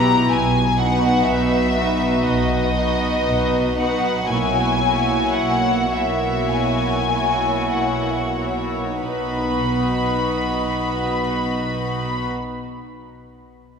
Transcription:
0.00 0.22 B1 soft
0.00 0.22 B2 medium
0.00 0.31 B3 soft
0.00 0.31 E4 soft
0.00 0.31 G4 soft
0.00 0.30 B4 soft
0.00 0.31 A#5 medium
0.32 1.16 B1 soft
0.32 1.16 B2 medium
0.32 0.79 G#5 soft
0.79 1.73 B3 soft
0.79 1.73 D#4 soft
0.79 1.73 F#4 soft
0.79 1.73 B4 soft
0.79 1.27 F#5 medium
1.26 2.13 B1 soft
1.26 2.14 B2 soft
1.26 2.25 E5 medium
1.74 2.74 B3 soft
1.74 2.74 D#4 soft
1.74 2.73 F#4 soft
1.74 2.73 B4 soft
2.25 3.15 B1 soft
2.25 3.15 B2 soft
2.25 3.78 D#5 medium
2.75 3.75 B3 soft
2.75 3.75 D#4 soft
2.75 3.75 F#4 soft
2.75 3.75 B4 soft
3.27 4.17 B1 soft
3.27 4.17 B2 soft
3.76 4.27 B3 soft
3.76 4.27 D#4 soft
3.76 4.27 F#4 soft
3.76 4.28 B4 soft
3.76 4.28 F#5 medium
4.27 5.22 B1 soft
4.27 5.22 B2 soft
4.27 4.79 A#3 soft
4.27 4.80 E4 soft
4.27 4.79 F#4 soft
4.27 4.79 C#5 soft
4.27 5.34 G#5 medium
4.81 5.90 A#3 soft
4.81 5.90 E4 soft
4.81 5.90 F#4 soft
4.81 5.90 C#5 soft
5.34 6.36 B1 soft
5.34 6.36 B2 soft
5.34 5.91 F#5 medium
5.92 7.07 A#3 soft
5.92 7.07 E4 soft
5.92 7.07 F#4 soft
5.92 7.07 C#5 soft
5.92 6.50 E5 soft
6.50 7.56 B1 soft
6.50 7.56 B2 soft
6.50 7.71 G#5 soft
7.09 8.34 A#3 soft
7.09 8.34 E4 soft
7.09 8.34 F#4 soft
7.09 8.34 C#5 soft
7.71 8.86 B1 soft
7.71 8.86 B2 soft
7.71 8.36 F#5 soft
8.38 9.00 A#3 soft
8.38 9.00 E4 soft
8.38 9.00 F#4 soft
8.38 9.00 C#5 soft
9.00 12.27 B1 soft
9.00 12.26 B2 soft
9.00 12.27 B3 soft
9.00 12.26 D#4 soft
9.00 12.28 F#4 soft
9.00 12.29 B4 soft
9.00 12.26 B5 soft

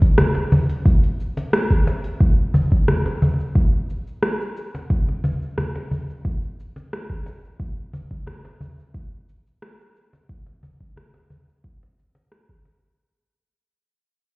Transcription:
0.02 kick medium
0.02 open hi-hat soft
0.02 cabasa soft
0.18 cajon bass medium
0.18 cross-stick medium
0.18 open hi-hat soft
0.18 cabasa soft
0.35 cajon slap medium
0.52 cajon bass medium
0.52 cabasa medium
0.70 open hi-hat soft
0.70 cabasa soft
0.86 kick loud
0.86 open hi-hat soft
0.86 cabasa soft
1.04 open hi-hat soft
1.04 cabasa soft
1.20 cabasa medium
1.37 cajon slap medium
1.37 open hi-hat soft
1.37 cabasa soft
1.53 cross-stick loud
1.53 open hi-hat medium
1.53 cabasa soft
1.71 kick medium
1.71 open hi-hat soft
1.71 cabasa soft
1.87 cajon slap medium
1.87 cabasa medium
2.04 open hi-hat soft
2.04 cabasa soft
2.21 kick loud
2.21 cabasa soft
2.54 cajon bass medium
2.54 cabasa medium
2.72 kick medium
2.72 cabasa soft
2.88 cajon bass medium
2.88 cross-stick medium
2.88 cabasa soft
3.06 cajon slap medium
3.22 cajon bass medium
3.22 cabasa medium
3.40 cabasa soft
3.55 kick loud
3.55 cabasa soft
3.90 cabasa medium
4.07 cabasa soft
4.23 cross-stick medium
4.23 cabasa soft
4.41 cabasa soft
4.57 cabasa medium
4.75 cajon slap medium
4.75 cabasa soft
4.90 kick loud
4.90 cabasa soft
5.09 cajon slap soft
5.24 cajon bass medium
5.24 cabasa medium
5.42 cabasa soft
5.58 cajon bass medium
5.58 cross-stick medium
5.58 cabasa soft
5.75 cajon slap medium
5.91 cajon bass medium
5.91 cabasa medium
6.10 cabasa soft
6.25 kick medium
6.25 cabasa soft
6.43 cabasa soft
6.60 cabasa medium
6.76 cajon slap medium
6.76 cabasa soft
6.93 cross-stick medium
6.93 cabasa soft
7.10 kick soft
7.10 cabasa soft
7.26 cajon slap medium
7.26 cabasa medium
7.45 cabasa soft
7.60 kick loud
7.60 cabasa soft
7.93 cajon bass medium
7.93 cabasa medium
8.11 kick medium
8.11 cabasa soft
8.27 cajon bass medium
8.27 cross-stick medium
8.27 cabasa soft
8.45 cajon slap medium
8.61 cajon bass medium
8.61 cabasa medium
8.79 cabasa soft
8.94 kick medium
8.94 cabasa soft
9.29 cabasa medium
9.47 cabasa soft
9.62 cross-stick loud
9.62 cabasa soft
9.80 cabasa soft
9.96 cabasa medium
10.13 cajon slap medium
10.13 cabasa soft
10.29 kick loud
10.29 cabasa soft
10.46 cajon slap medium
10.46 cabasa soft
10.63 cajon bass medium
10.63 cabasa medium
10.81 kick medium
10.81 cabasa soft
10.96 cajon bass medium
10.96 cross-stick medium
11.14 cajon slap medium
11.14 cabasa soft
11.30 cajon bass medium
11.30 cabasa medium
11.49 cabasa soft
11.64 kick medium
11.64 cabasa soft
11.83 cajon slap medium
11.99 cabasa medium
12.15 cajon slap medium
12.32 cross-stick medium
12.49 kick medium
12.65 cajon slap medium

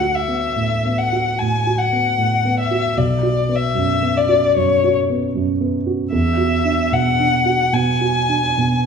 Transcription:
0.00 1.34 D2 soft
0.00 0.45 F#4 soft
0.00 0.16 F#5 soft
0.15 1.00 E5 soft
0.28 0.73 B3 soft
0.56 1.00 A2 soft
0.85 1.29 B3 soft
0.98 1.40 F#5 soft
1.12 1.56 F#4 soft
1.39 1.83 A2 soft
1.39 1.80 G#5 soft
1.66 2.08 F#4 soft
1.79 2.58 F#5 soft
1.92 2.34 B3 soft
2.18 2.60 A2 soft
2.45 2.87 B3 soft
2.60 2.99 E5 soft
2.71 2.98 F#4 soft
2.97 4.52 B1 soft
2.97 3.57 D5 soft
3.23 3.66 F#4 soft
3.49 3.92 B3 soft
3.56 4.18 E5 soft
3.75 4.18 F#2 soft
4.02 4.45 B3 soft
4.17 4.56 D5 soft
4.29 4.72 F#4 soft
4.56 4.99 F#2 soft
4.56 4.96 C#5 soft
4.84 5.26 F#4 soft
5.10 5.51 B3 soft
5.35 5.77 F#2 soft
5.60 6.02 B3 soft
5.86 6.13 F#4 soft
6.12 7.69 E2 soft
6.12 6.95 E5 soft
6.37 6.80 F#4 soft
6.65 7.08 D4 soft
6.92 7.36 B2 soft
6.92 7.75 F#5 medium
7.20 7.63 D4 soft
7.46 7.90 F#4 soft
7.73 8.18 B2 soft
7.73 8.86 G#5 medium
8.01 8.46 F#4 soft
8.29 8.75 D4 soft
8.58 8.86 B2 soft

